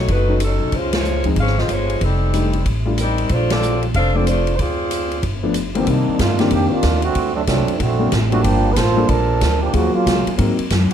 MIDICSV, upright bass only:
0, 0, Header, 1, 3, 480
1, 0, Start_track
1, 0, Tempo, 321888
1, 1075, Time_signature, 4, 2, 24, 8
1, 16308, End_track
2, 0, Start_track
2, 0, Title_t, "Upright bass"
2, 0, Program_c, 0, 32
2, 129, Note_on_c, 0, 30, 88
2, 853, Note_off_c, 0, 30, 0
2, 896, Note_on_c, 0, 35, 63
2, 1060, Note_off_c, 0, 35, 0
2, 1080, Note_on_c, 0, 37, 77
2, 1808, Note_off_c, 0, 37, 0
2, 1853, Note_on_c, 0, 38, 61
2, 2018, Note_off_c, 0, 38, 0
2, 2040, Note_on_c, 0, 32, 81
2, 2483, Note_off_c, 0, 32, 0
2, 2504, Note_on_c, 0, 31, 78
2, 2954, Note_off_c, 0, 31, 0
2, 2997, Note_on_c, 0, 29, 86
2, 3907, Note_off_c, 0, 29, 0
2, 3961, Note_on_c, 0, 33, 82
2, 4868, Note_off_c, 0, 33, 0
2, 4921, Note_on_c, 0, 34, 80
2, 5829, Note_off_c, 0, 34, 0
2, 5885, Note_on_c, 0, 29, 85
2, 6791, Note_off_c, 0, 29, 0
2, 6836, Note_on_c, 0, 38, 87
2, 7746, Note_off_c, 0, 38, 0
2, 7794, Note_on_c, 0, 31, 85
2, 8705, Note_off_c, 0, 31, 0
2, 8752, Note_on_c, 0, 36, 76
2, 9038, Note_off_c, 0, 36, 0
2, 9236, Note_on_c, 0, 43, 79
2, 9701, Note_off_c, 0, 43, 0
2, 9709, Note_on_c, 0, 41, 88
2, 9996, Note_off_c, 0, 41, 0
2, 10191, Note_on_c, 0, 39, 94
2, 10658, Note_off_c, 0, 39, 0
2, 10666, Note_on_c, 0, 38, 80
2, 11136, Note_off_c, 0, 38, 0
2, 11149, Note_on_c, 0, 36, 87
2, 11436, Note_off_c, 0, 36, 0
2, 11638, Note_on_c, 0, 34, 90
2, 12095, Note_off_c, 0, 34, 0
2, 12104, Note_on_c, 0, 33, 90
2, 12575, Note_off_c, 0, 33, 0
2, 12595, Note_on_c, 0, 31, 82
2, 13060, Note_off_c, 0, 31, 0
2, 13073, Note_on_c, 0, 33, 85
2, 13539, Note_off_c, 0, 33, 0
2, 13548, Note_on_c, 0, 34, 80
2, 14016, Note_off_c, 0, 34, 0
2, 14040, Note_on_c, 0, 38, 87
2, 14502, Note_off_c, 0, 38, 0
2, 14524, Note_on_c, 0, 39, 78
2, 14804, Note_off_c, 0, 39, 0
2, 15003, Note_on_c, 0, 37, 89
2, 15283, Note_off_c, 0, 37, 0
2, 15484, Note_on_c, 0, 44, 91
2, 15764, Note_off_c, 0, 44, 0
2, 15964, Note_on_c, 0, 42, 85
2, 16244, Note_off_c, 0, 42, 0
2, 16308, End_track
3, 0, Start_track
3, 0, Title_t, "Muted upright bass strokes"
3, 9061, Note_on_c, 9, 29, 39
3, 9211, Note_off_c, 9, 29, 0
3, 10035, Note_on_c, 9, 29, 43
3, 10184, Note_off_c, 9, 29, 0
3, 11443, Note_on_c, 9, 29, 40
3, 11592, Note_off_c, 9, 29, 0
3, 14839, Note_on_c, 9, 29, 40
3, 14989, Note_off_c, 9, 29, 0
3, 15304, Note_on_c, 9, 29, 38
3, 15453, Note_off_c, 9, 29, 0
3, 15789, Note_on_c, 9, 29, 39
3, 15939, Note_off_c, 9, 29, 0
3, 16308, End_track
0, 0, End_of_file